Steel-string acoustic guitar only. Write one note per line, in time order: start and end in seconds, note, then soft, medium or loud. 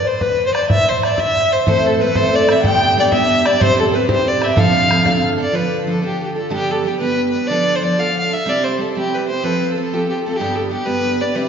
1.66 2.00 A2 medium
1.66 2.00 E3 medium
1.66 2.00 A3 medium
1.66 2.00 C4 medium
1.66 2.01 E4 medium
1.66 2.01 A4 loud
2.02 2.16 A3 medium
2.02 2.17 C4 medium
2.02 2.16 E4 medium
2.02 2.16 A4 medium
2.17 2.50 A2 soft
2.17 2.50 E3 medium
2.17 2.50 A3 medium
2.17 2.49 C4 medium
2.17 2.49 E4 medium
2.17 2.47 A4 medium
2.48 2.64 A3 soft
2.48 2.64 C4 medium
2.48 2.64 E4 soft
2.48 2.64 A4 medium
2.64 2.97 G2 loud
2.64 2.97 D3 medium
2.64 2.96 G3 medium
2.64 2.97 B3 medium
2.64 2.97 D4 medium
2.64 2.97 G4 medium
2.97 3.12 G3 medium
2.97 3.11 B3 medium
2.97 3.11 D4 medium
2.97 3.10 G4 medium
3.12 3.46 G2 medium
3.12 3.46 D3 medium
3.12 3.46 G3 medium
3.12 3.45 B3 medium
3.12 3.45 D4 medium
3.12 3.43 G4 medium
3.44 3.59 G3 soft
3.44 3.61 B3 soft
3.44 3.61 D4 soft
3.44 3.60 G4 medium
3.59 3.93 C3 medium
3.59 3.91 G3 medium
3.59 3.92 C4 medium
3.59 3.93 E4 medium
3.59 3.94 G4 medium
3.92 4.08 G3 medium
3.92 4.08 C4 medium
3.92 4.07 E4 medium
3.92 4.06 G4 medium
4.07 4.42 C3 medium
4.07 4.42 G3 medium
4.07 4.42 C4 soft
4.07 4.41 E4 medium
4.07 4.40 G4 medium
4.41 4.56 C4 soft
4.41 4.57 E4 soft
4.41 4.57 G4 medium
4.56 4.92 D3 medium
4.56 4.87 F3 medium
4.56 4.88 C4 medium
4.56 4.90 D4 medium
4.56 4.89 A4 medium
4.88 5.04 F3 medium
4.88 5.04 C4 medium
4.88 5.03 D4 medium
4.88 5.03 A4 medium
5.04 5.43 D3 medium
5.04 5.39 F3 medium
5.04 5.39 C4 medium
5.04 5.39 D4 medium
5.04 5.37 A4 medium
5.38 5.53 C4 soft
5.38 5.52 D4 soft
5.38 5.52 A4 medium
5.52 6.03 D3 medium
5.52 5.86 F3 medium
5.52 5.87 D4 medium
5.52 5.87 F4 medium
5.52 5.87 A4 medium
5.87 6.02 F3 medium
5.87 6.02 D4 medium
5.87 6.02 F4 medium
5.87 6.01 A4 medium
6.02 6.50 D3 medium
6.02 6.36 F3 medium
6.02 6.37 D4 medium
6.02 6.35 F4 medium
6.02 6.33 A4 medium
6.35 6.50 D4 soft
6.35 6.51 F4 soft
6.35 6.51 A4 soft
6.49 6.84 G2 medium
6.49 6.84 D3 medium
6.49 6.82 G3 medium
6.49 6.83 B3 medium
6.49 6.85 D4 medium
6.49 6.85 G4 medium
6.84 6.99 G3 medium
6.84 6.99 B3 medium
6.84 6.99 D4 medium
6.84 6.99 G4 medium
7.00 7.34 G2 soft
7.00 7.34 D3 medium
7.00 7.33 G3 medium
7.00 7.33 B3 medium
7.00 7.33 D4 medium
7.00 7.32 G4 medium
7.33 7.50 G3 soft
7.33 7.49 B3 soft
7.33 7.49 D4 soft
7.33 7.48 G4 medium
7.50 7.82 D3 medium
7.50 7.80 F3 medium
7.50 7.82 D4 medium
7.50 7.82 F4 medium
7.50 7.83 A4 medium
7.82 7.97 F3 medium
7.82 7.98 D4 medium
7.82 7.97 F4 medium
7.82 7.97 A4 medium
7.98 8.31 D3 soft
7.98 8.31 F3 medium
7.98 8.31 D4 soft
7.98 8.31 F4 medium
7.98 8.29 A4 medium
8.31 8.46 D4 soft
8.31 8.46 F4 soft
8.31 8.46 A4 soft
8.46 8.79 C3 medium
8.46 8.77 G3 medium
8.46 8.78 C4 medium
8.46 8.78 E4 medium
8.46 8.79 G4 medium
8.78 8.94 G3 medium
8.78 8.94 C4 medium
8.78 8.94 E4 medium
8.78 8.94 G4 medium
8.95 9.29 C3 soft
8.95 9.29 G3 medium
8.95 9.28 C4 soft
8.95 9.28 E4 medium
8.95 9.27 G4 soft
9.29 9.42 C4 soft
9.29 9.43 E4 soft
9.29 9.43 G4 soft
9.43 9.74 F3 medium
9.43 9.75 C4 medium
9.43 9.76 F4 medium
9.43 9.76 A4 medium
9.76 9.91 F3 medium
9.76 9.91 C4 medium
9.76 9.92 F4 medium
9.76 9.92 A4 medium
9.93 10.26 F3 soft
9.93 10.26 C4 medium
9.93 10.25 F4 medium
9.93 10.25 A4 medium
10.26 10.40 C4 soft
10.26 10.41 F4 soft
10.26 10.40 A4 medium
10.39 10.73 G2 medium
10.39 10.73 D3 medium
10.39 10.69 G3 medium
10.39 10.70 B3 medium
10.39 10.71 D4 medium
10.39 10.72 G4 medium
10.71 10.85 G3 medium
10.71 10.86 B3 medium
10.71 10.85 D4 medium
10.71 10.85 G4 medium
10.86 11.21 G2 soft
10.86 11.21 D3 soft
10.86 11.20 G3 medium
10.86 11.21 B3 medium
10.86 11.20 D4 medium
10.86 11.19 G4 medium
11.20 11.34 G3 soft
11.20 11.35 B3 soft
11.20 11.36 D4 soft
11.20 11.35 G4 soft
11.35 11.49 C3 medium
11.35 11.49 G3 medium
11.35 11.49 C4 medium
11.35 11.49 E4 medium
11.35 11.49 G4 medium